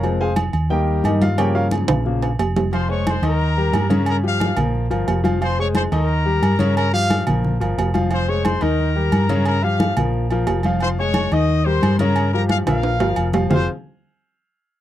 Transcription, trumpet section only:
X:1
M:4/4
L:1/8
Q:1/4=178
K:Fm
V:1 name="Trumpet section"
z8 | z8 | [cc'] [dd'] [cc'] [Bb]4- [Bb] | [Bb] f2 z4 z |
[cc'] [dd'] [cc'] [Bb]4- [Bb] | [Bb] f2 z4 z | [cc'] [dd'] [cc'] [Bb]4- [Bb] | [Bb] f2 z4 z |
[cc'] [dd']2 [ee']2 [cc']2 [Bb]- | [Bb] [Bb] f f4 z | c z6 z |]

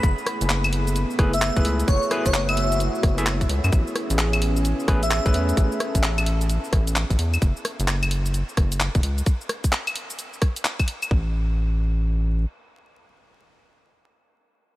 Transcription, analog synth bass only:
X:1
M:4/4
L:1/16
Q:"Swing 16ths" 1/4=130
K:F#m
V:1 name="Analog synth bass" clef=bass
F,,, z2 F,,,6 z F,,,3 F,,, C,,2 | F,,, z2 F,,,6 z F,,,3 E,,, C,, F,, | A,,, z2 A,,,6 z A,,,3 A,,, E,,2 | A,,, z2 A,,,6 z A,,,3 A,,, E,,2 |
F,,, z2 F,,,6 z F,,,3 F,,, C,,2 | z16 | A,,,12 z4 | z16 |]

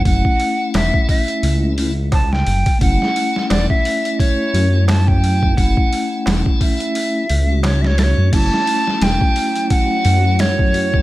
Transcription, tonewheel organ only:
X:1
M:4/4
L:1/16
Q:"Swing 16ths" 1/4=87
K:F#phr
V:1 name="Tonewheel organ"
[A,CE]8- [A,CE]2 [A,CE] z4 z | [A,CE]8- [A,CE]3 [A,CE]4- [A,CE] | [A,CE]8- [A,CE]2 z [A,CF]4- [A,CF] | [A,CE]8- [A,CE]3 [A,CE]4- [A,CE] |]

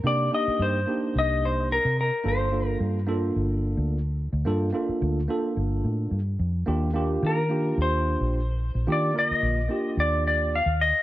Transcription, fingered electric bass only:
X:1
M:4/4
L:1/16
Q:"Swing 16ths" 1/4=109
K:Gm
V:1 name="Fingered electric bass" clef=bass
C,2 z2 G,,2 z2 C,,4- C,, C,2 z | G,,,4 G,,4 G,,,3 D,,4 D,, | G,,2 z2 D,,2 z2 G,,,2 A,,2 G,,2 F,,2 | E,,4 E,4 E,,3 B,,,4 B,,, |
E,2 z2 B,,,2 z2 E,,4- E,, E,,2 z |]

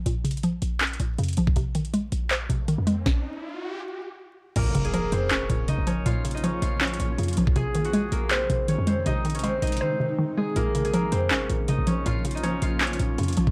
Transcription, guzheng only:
X:1
M:4/4
L:1/16
Q:1/4=160
K:Bbm
V:1 name="Guzheng"
z16 | z16 | z16 | [B,B]3 [Aa] [B,B]2 [Cc]2 [Dd]4 [Ee]2 [Dd]2 |
[Ff]3 [Ee] [Dd]2 [Ff]2 [Dd]8 | [Aa]3 [Gg] [Aa]2 [B,B]2 [Cc]4 [Dd]2 [Cc]2 | [Ee]3 [Dd] [Cc]2 [Ee]2 [Cc]6 [Aa]2 | [B,B]3 [Aa] [B,B]2 [Cc]2 [Dd]4 [Ee]2 [Dd]2 |
[Ff]3 [Ee] [Dd]2 [Ff]2 [Dd]8 |]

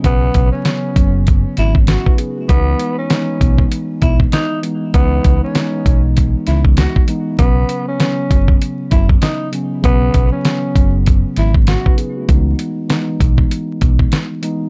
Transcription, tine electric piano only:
X:1
M:4/4
L:1/16
Q:"Swing 16ths" 1/4=98
K:C#m
V:1 name="Tine electric piano"
z12 z [DB] [B,G] [A,F]- | [A,F] z12 z3 | z16 | z16 |
z12 z [DB] [B,G] [A,F]- | [A,F] z12 z3 |]
V:2 name="Tine electric piano"
[C,F,B,C]2 z2 [C,F,B,C]6 z6 | [E,G,B,D]2 z2 [E,G,B,D]6 z4 [E,G,B,D]2 | [E,G,B,D]2 z2 [E,G,B,D]6 z4 [E,G,B,D]2 | [C,F,B,C]2 z2 [C,F,B,C]6 z4 [C,F,B,C]2 |
[C,F,B,C]2 z2 [C,F,B,C]6 z6 | [E,G,B,D]2 z2 [E,G,B,D]6 z4 [E,G,B,D]2 |]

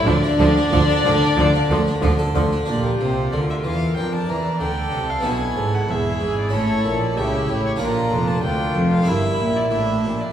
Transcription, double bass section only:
X:1
M:4/4
L:1/8
Q:1/4=93
K:Bblyd
V:1 name="Double bass section" clef=bass
D,, D,, D,, D,, D,, D,, D,, D,, | B,,, C,, D,, E,, F,, E,, D,, C,, | =B,,, ^G,,, E,,, G,,, A,,, _B,,, ^C,, A,,, | B,,, F,,, D,, F,,, G,,, B,,, A,,, B,,, |]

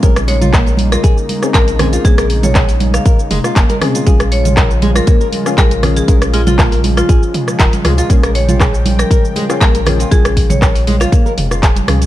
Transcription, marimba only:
X:1
M:4/4
L:1/16
Q:"Swing 16ths" 1/4=119
K:Dblyd
V:1 name="Marimba"
z2 d z4 B z4 B z3 | A z2 d z3 f6 z3 | z2 d z4 B z4 B z2 A- | A2 F F z3 F6 z3 |
z2 d z4 B z4 B z3 | A z2 d z3 f6 z3 |]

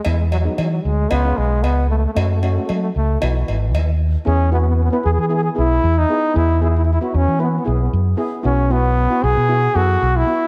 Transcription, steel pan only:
X:1
M:4/4
L:1/16
Q:1/4=115
K:E
V:1 name="Steel pan"
[G,B,E]2 z [G,B,D]4 z [G,C^E] [G,CE]4 z3 | [A,CF] z [A,CF] [A,CF]4- [A,CF] [B,EF]6 z2 | [B,EG] z [B,EF]2 z [B,EB]2 z [B,EG] z [B,EG]2 z2 [B,EG] z | [B,EG] z [B,EG]2 z [B,EF]2 z [B,EB] z [B,EG]2 z2 [B,EG] z |
[B,EF] z [B,EF]2 z [B,EF]2 z [B,EF] z [B,EA]2 z2 [B,EF] z |]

